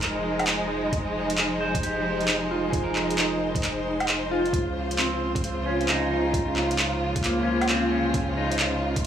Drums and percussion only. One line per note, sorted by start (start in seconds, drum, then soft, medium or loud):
0.03 clap medium
0.03 closed hi-hat medium
0.39 closed hi-hat soft
0.39 low woodblock medium
0.47 clap loud
0.47 closed hi-hat medium
0.92 kick loud
0.92 closed hi-hat medium
1.30 closed hi-hat medium
1.38 clap loud
1.38 closed hi-hat medium
1.75 kick loud
1.75 closed hi-hat medium
1.83 closed hi-hat medium
2.21 closed hi-hat soft
2.28 clap loud
2.28 closed hi-hat medium
2.73 kick loud
2.73 closed hi-hat medium
2.96 clap medium
3.11 closed hi-hat medium
3.18 clap loud
3.18 closed hi-hat medium
3.55 kick loud
3.55 closed hi-hat medium
3.63 clap medium
3.63 closed hi-hat medium
4.00 closed hi-hat soft
4.00 low woodblock medium
4.08 clap loud
4.08 closed hi-hat medium
4.46 closed hi-hat soft
4.53 kick loud
4.53 closed hi-hat medium
4.91 closed hi-hat medium
4.99 clap loud
4.99 closed hi-hat medium
5.35 kick loud
5.35 closed hi-hat medium
5.44 closed hi-hat medium
5.81 closed hi-hat soft
5.89 clap loud
5.89 closed hi-hat medium
6.33 kick loud
6.33 closed hi-hat medium
6.56 clap medium
6.71 closed hi-hat medium
6.79 clap loud
6.79 closed hi-hat medium
7.16 kick loud
7.16 closed hi-hat medium
7.24 clap medium
7.24 closed hi-hat medium
7.61 closed hi-hat soft
7.61 low woodblock medium
7.69 clap loud
7.69 closed hi-hat medium
8.14 kick loud
8.14 closed hi-hat medium
8.51 closed hi-hat medium
8.59 clap loud
8.59 closed hi-hat medium
8.96 kick loud
8.96 closed hi-hat medium